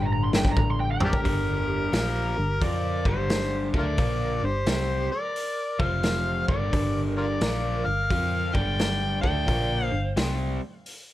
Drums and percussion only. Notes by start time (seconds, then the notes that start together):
0.33 snare
0.45 kick
0.57 kick
1.00 floor tom
1.13 kick
1.25 kick, open hi-hat
1.93 snare, open hi-hat
2.62 kick, open hi-hat
3.05 kick
3.30 snare, open hi-hat
3.74 kick
3.98 kick, open hi-hat
4.66 snare, open hi-hat
5.36 open hi-hat
5.80 kick
6.03 snare, open hi-hat
6.48 kick
6.73 kick, open hi-hat
7.41 snare, open hi-hat
8.10 kick, open hi-hat
8.55 kick
8.79 snare, open hi-hat
9.24 kick
9.48 kick, open hi-hat
10.17 snare, open hi-hat
10.86 open hi-hat